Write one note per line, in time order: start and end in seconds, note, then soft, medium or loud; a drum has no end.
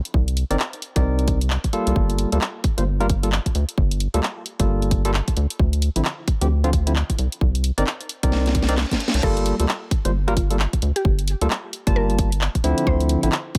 0.05 closed hi-hat medium
0.14 0.44 C2 loud
0.14 kick loud
0.28 closed hi-hat soft
0.37 open hi-hat loud
0.51 0.57 G1 medium
0.51 0.56 C4 medium
0.51 0.56 D#4 medium
0.51 0.56 A#4 medium
0.51 0.56 D5 medium
0.51 closed hi-hat medium
0.60 clap loud
0.73 closed hi-hat soft
0.82 open hi-hat medium
0.96 1.58 C2 loud
0.96 1.38 C4 medium
0.96 1.38 D#4 medium
0.96 1.38 A#4 medium
0.96 1.38 D5 medium
0.96 kick loud
0.96 closed hi-hat medium
1.19 closed hi-hat soft
1.28 kick loud
1.28 open hi-hat medium
1.41 closed hi-hat medium
1.50 clap loud
1.64 kick medium
1.64 closed hi-hat soft
1.73 2.29 G3 medium
1.73 2.29 A#3 medium
1.73 2.29 F4 medium
1.73 2.29 A4 medium
1.73 open hi-hat medium
1.87 1.93 C2 medium
1.87 closed hi-hat medium
1.96 2.26 G1 loud
1.96 kick loud
2.10 closed hi-hat soft
2.19 open hi-hat loud
2.32 2.39 D2 medium
2.32 2.37 G3 medium
2.32 2.38 A#3 medium
2.32 2.38 F4 medium
2.32 2.38 A4 medium
2.32 closed hi-hat medium
2.41 clap loud
2.64 kick loud
2.64 open hi-hat medium
2.78 3.39 G1 medium
2.78 2.83 G3 medium
2.78 2.83 A#3 medium
2.78 2.83 F4 medium
2.78 2.83 C5 medium
2.78 cross-stick soft
2.78 closed hi-hat medium
3.00 3.06 G3 medium
3.00 3.06 A#3 medium
3.00 3.06 F4 medium
3.00 3.06 A#4 loud
3.00 closed hi-hat soft
3.10 kick loud
3.10 open hi-hat loud
3.23 3.28 G3 medium
3.23 3.28 A#3 medium
3.23 3.28 F4 medium
3.23 3.28 A4 medium
3.23 closed hi-hat medium
3.32 clap loud
3.46 kick medium
3.46 closed hi-hat medium
3.55 3.65 D2 medium
3.55 open hi-hat medium
3.69 closed hi-hat medium
3.78 4.08 G1 loud
3.78 kick loud
3.91 closed hi-hat medium
4.00 open hi-hat loud
4.14 4.20 D2 medium
4.14 4.19 G3 medium
4.14 4.19 A#3 medium
4.14 4.19 F4 medium
4.14 4.19 A4 loud
4.14 closed hi-hat medium
4.23 clap loud
4.46 open hi-hat medium
4.60 5.21 G1 loud
4.60 5.02 G3 medium
4.60 5.02 A#3 medium
4.60 5.02 F4 medium
4.60 5.02 A4 medium
4.60 kick loud
4.60 closed hi-hat medium
4.82 closed hi-hat soft
4.91 kick loud
4.91 open hi-hat loud
5.05 5.10 G3 medium
5.05 5.10 A#3 medium
5.05 5.10 F4 medium
5.05 5.10 A4 loud
5.05 closed hi-hat medium
5.14 clap loud
5.28 kick medium
5.28 closed hi-hat medium
5.37 5.46 D2 loud
5.37 open hi-hat medium
5.50 closed hi-hat medium
5.59 5.89 D2 medium
5.59 kick loud
5.73 closed hi-hat medium
5.82 open hi-hat loud
5.96 6.02 A1 medium
5.96 6.01 D3 medium
5.96 6.01 F3 medium
5.96 6.01 C4 medium
5.96 6.01 E4 medium
5.96 closed hi-hat medium
6.05 clap loud
6.28 kick medium
6.28 open hi-hat medium
6.41 7.03 D2 loud
6.41 6.47 D3 medium
6.41 6.47 F3 medium
6.41 6.47 C4 medium
6.41 6.47 G4 medium
6.41 cross-stick soft
6.41 closed hi-hat medium
6.64 6.69 D3 medium
6.64 6.69 F3 medium
6.64 6.69 C4 medium
6.64 6.69 F4 loud
6.64 closed hi-hat soft
6.73 kick medium
6.73 open hi-hat loud
6.87 6.92 D3 medium
6.87 6.92 F3 medium
6.87 6.92 C4 medium
6.87 6.92 E4 medium
6.87 closed hi-hat medium
6.96 clap loud
7.10 kick medium
7.10 closed hi-hat medium
7.18 7.28 C2 loud
7.18 open hi-hat medium
7.32 closed hi-hat medium
7.41 7.71 C2 loud
7.41 kick loud
7.55 closed hi-hat medium
7.64 open hi-hat loud
7.78 7.84 G1 medium
7.78 7.83 C4 medium
7.78 7.83 D#4 medium
7.78 7.83 A#4 medium
7.78 7.83 D5 medium
7.78 cross-stick soft
7.78 closed hi-hat medium
7.87 clap loud
8.01 closed hi-hat soft
8.09 open hi-hat loud
8.23 8.85 C2 loud
8.23 8.65 C4 medium
8.23 8.65 D#4 medium
8.23 8.65 A#4 medium
8.23 8.65 D5 medium
8.23 kick loud
8.23 closed hi-hat medium
8.32 snare medium
8.32 reverse cymbal medium
8.46 snare medium
8.46 closed hi-hat soft
8.55 kick loud
8.55 open hi-hat loud
8.62 snare medium
8.69 8.74 C4 medium
8.69 8.74 D#4 medium
8.69 8.74 A#4 medium
8.69 8.74 D5 loud
8.69 closed hi-hat medium
8.78 snare medium
8.78 clap loud
8.91 kick medium
8.91 snare loud
8.91 closed hi-hat medium
9.00 open hi-hat medium
9.08 snare loud
9.14 9.20 C2 medium
9.14 closed hi-hat medium
9.23 9.53 G1 loud
9.23 9.54 G3 loud
9.23 9.54 A#3 medium
9.23 9.54 F4 medium
9.23 9.39 A4 loud
9.23 9.54 A4 loud
9.23 kick loud
9.23 crash loud
9.37 closed hi-hat medium
9.46 open hi-hat loud
9.60 9.66 D2 medium
9.60 9.65 G3 medium
9.60 9.65 A#3 medium
9.60 9.65 F4 medium
9.60 9.65 A4 medium
9.60 closed hi-hat medium
9.69 clap loud
9.91 kick loud
9.91 open hi-hat loud
10.05 10.67 G1 loud
10.05 10.10 G3 medium
10.05 10.10 A#3 medium
10.05 10.10 F4 medium
10.05 10.10 C5 medium
10.05 cross-stick soft
10.05 closed hi-hat medium
10.28 10.33 G3 loud
10.28 10.33 A#3 medium
10.28 10.33 F4 medium
10.28 10.40 F4 medium
10.28 10.33 A#4 loud
10.28 closed hi-hat soft
10.37 kick loud
10.37 open hi-hat loud
10.50 10.56 G3 medium
10.50 10.56 A#3 medium
10.50 10.56 F4 medium
10.50 10.56 A4 medium
10.50 closed hi-hat medium
10.59 clap loud
10.73 kick medium
10.73 closed hi-hat medium
10.82 10.92 D2 loud
10.82 open hi-hat loud
10.96 11.08 G4 medium
10.96 closed hi-hat medium
11.05 11.35 G1 loud
11.05 kick loud
11.19 closed hi-hat soft
11.28 open hi-hat loud
11.41 11.48 D2 medium
11.41 11.47 G3 medium
11.41 11.47 A#3 medium
11.41 11.47 F4 medium
11.41 11.47 A4 loud
11.41 closed hi-hat medium
11.50 clap loud
11.73 open hi-hat medium
11.87 12.49 G1 loud
11.87 12.29 G3 medium
11.87 12.29 A#3 medium
11.87 12.29 F4 medium
11.87 12.29 A5 medium
11.87 kick loud
11.87 closed hi-hat medium
11.96 12.80 A#4 loud
12.10 closed hi-hat soft
12.19 kick loud
12.19 open hi-hat loud
12.32 closed hi-hat medium
12.41 clap loud
12.55 kick medium
12.55 closed hi-hat medium
12.64 12.74 D2 loud
12.64 13.20 D3 medium
12.64 13.20 F3 medium
12.64 13.20 C4 medium
12.64 13.20 E4 loud
12.64 open hi-hat medium
12.78 closed hi-hat medium
12.87 13.17 D2 loud
12.87 13.03 C5 loud
12.87 kick loud
13.00 closed hi-hat soft
13.09 open hi-hat loud
13.23 13.30 A1 medium
13.23 13.28 D3 medium
13.23 13.28 F3 medium
13.23 13.28 C4 medium
13.23 13.28 E4 medium
13.23 closed hi-hat medium
13.32 clap loud
13.55 kick loud
13.55 open hi-hat medium